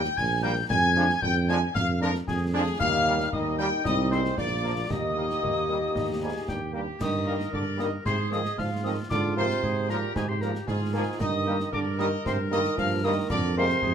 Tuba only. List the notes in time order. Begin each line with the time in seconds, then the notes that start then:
0.18 A#1
0.70 F2
1.23 F2
1.75 F2
2.28 F2
2.81 D#2
3.33 D#2
3.86 C2
4.38 A#1
4.91 D#2
5.43 D#2
5.96 D#2
6.48 D#2
7.01 G2
7.54 G2
8.06 G#2
8.58 G#2
9.11 G#2
9.63 G#2
10.16 G#2
10.68 G#2
11.21 G2
11.73 G2
12.26 G2
12.78 G2
13.31 F2
13.84 F2